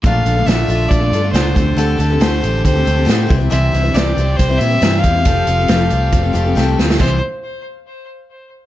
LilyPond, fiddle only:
\new Staff \with { instrumentName = "Fiddle" } { \time 4/4 \key c \mixolydian \tempo 4 = 138 f''4 e''4 d''4 c''4 | a'4 c''4 c''4. r8 | e''4 d''4 c''8 e''4 f''8~ | f''2. r4 |
c''8 r2. r8 | }